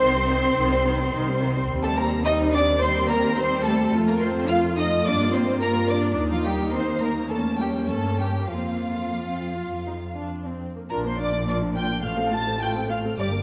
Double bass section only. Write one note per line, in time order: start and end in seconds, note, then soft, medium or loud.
0.01 0.50 C2 loud
0.56 1.06 C2 medium
1.13 1.63 C2 loud
1.69 3.88 D#2 medium
3.92 5.03 F2 medium
5.06 6.17 G2 medium
6.17 7.26 D#2 medium
7.30 7.88 E2 medium
7.89 8.49 G2 medium
8.49 9.68 F2 medium
9.71 10.68 F2 medium
10.91 12.01 A#1 medium
12.04 13.18 A1 medium
13.19 13.43 G1 medium